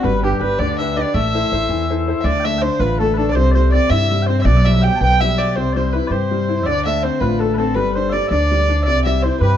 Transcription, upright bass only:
0.04 0.33 G1 loud
0.41 0.55 G1 medium
0.59 1.02 D2 medium
1.14 1.43 A1 loud
1.52 1.66 A1 medium
1.69 2.12 E2 medium
2.24 2.67 D2 loud
2.79 3.35 A1 loud
3.35 3.77 C2 loud
3.90 4.46 G2 medium
4.45 4.88 B1 loud
5.01 5.55 B1 loud
5.55 5.98 C2 loud
6.10 6.65 G2 medium
6.65 7.08 D2 loud
7.21 7.76 A1 loud
7.76 8.18 G1 loud
8.31 8.86 D2 loud
8.86 9.28 C2 loud
9.41 9.57 G2 medium

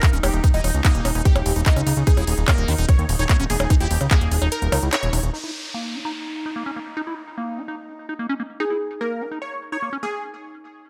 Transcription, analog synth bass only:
0.13 0.20 D#1 medium
0.23 0.30 E1 loud
0.34 0.40 D#1 medium
0.54 0.61 D#1 medium
0.64 0.71 D#1 loud
0.74 0.81 C#2 loud
0.95 1.01 D#1 medium
1.05 1.12 D#1 loud
1.15 1.22 D#1 medium
1.36 1.42 D#1 medium
1.46 1.52 D#1 loud
1.56 1.63 D#1 medium
1.76 1.83 C#2 medium
1.87 1.93 C#2 loud
1.97 2.03 C#2 medium
2.17 2.24 D#1 medium
2.27 2.34 D#1 loud
2.38 2.44 D#1 medium
2.58 2.65 D#1 medium
2.68 2.75 D#2 loud
2.78 2.85 D#1 loud
2.99 3.05 D#2 medium
3.09 3.16 D#1 loud
3.19 3.26 D#1 medium
3.40 3.46 D#1 medium
3.50 3.56 E1 loud
3.60 3.67 D#1 medium
3.80 3.87 D#1 medium
3.91 3.97 D#1 loud
4.01 4.07 C#2 medium
4.21 4.28 D#1 medium
4.31 4.38 D#1 loud
4.42 4.48 D#1 medium
4.62 4.69 D#1 medium
4.72 4.79 C#2 loud
4.83 4.89 C#2 medium
5.03 5.10 D#1 medium
5.13 5.20 D#1 loud
5.23 5.30 D#1 medium

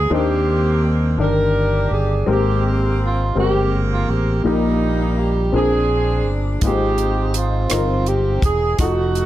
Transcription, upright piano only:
0.00 0.13 G2 soft
0.00 0.13 F4 medium
0.00 0.13 G4 soft
0.00 0.13 G#4 soft
0.00 0.13 B4 medium
0.10 1.15 D#3 soft
0.10 1.05 D4 medium
0.10 1.06 D#4 medium
0.10 1.06 A#4 soft
0.10 1.06 C5 medium
1.18 2.14 D#3 soft
1.18 2.14 D4 soft
1.18 2.14 A#4 soft
1.18 2.15 D5 soft
2.26 3.32 G#2 soft
2.26 3.23 G#3 soft
2.26 3.22 C4 medium
2.26 3.23 G4 medium
2.26 3.23 A#4 medium
3.35 4.31 G#3 soft
3.35 4.31 C4 soft
3.35 4.31 G4 soft
3.35 4.32 A#4 medium
4.44 5.49 A#2 soft
4.44 5.39 A#3 soft
4.44 5.40 D#4 medium
4.44 5.40 G4 soft
4.44 5.40 A#4 medium
5.52 6.58 A#2 soft
5.52 6.48 C4 medium
5.52 6.48 D4 soft
5.52 6.48 G#4 soft
5.52 6.49 A#4 soft
6.62 7.67 G#2 soft
6.62 7.58 G#3 medium
6.62 6.69 A#3 soft
6.62 7.57 D#4 soft
6.62 7.57 F4 soft
6.68 7.60 C4 medium
7.70 8.65 C4 soft
7.70 8.65 D#4 soft
7.70 8.66 F4 soft
7.70 8.66 A#4 medium
8.79 9.26 F3 medium
8.79 9.26 D#4 medium
8.79 9.26 F#4 medium
8.79 9.26 A4 medium

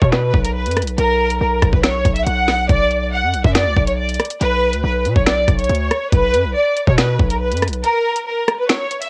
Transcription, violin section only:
0.02 0.11 C#5 medium
0.12 0.43 B4 medium
0.45 0.53 A#4 medium
0.55 0.73 B4 medium
0.98 1.38 A#4 loud
1.41 1.71 A#4 medium
1.73 1.82 B4 medium
1.84 2.14 C#5 medium
2.16 2.25 E5 medium
2.27 2.67 F#5 medium
2.69 3.10 D5 loud
3.12 3.43 F#5 medium
3.45 3.53 E5 medium
3.55 3.86 D5 loud
3.87 3.96 C#5 medium
3.98 4.16 D5 medium
4.41 4.81 B4 loud
4.84 5.14 B4 medium
5.16 5.25 C#5 medium
5.27 5.57 D5 medium
5.59 6.09 C#5 medium
6.12 6.53 B4 loud
6.55 6.85 D5 medium
6.88 6.96 C#5 medium
6.98 7.28 B4 medium
7.30 7.39 A#4 medium
7.41 7.59 B4 medium
7.84 8.24 A#4 loud
8.27 8.57 A#4 medium
8.59 8.68 B4 medium
8.70 9.00 C#5 medium
9.02 9.10 E5 medium

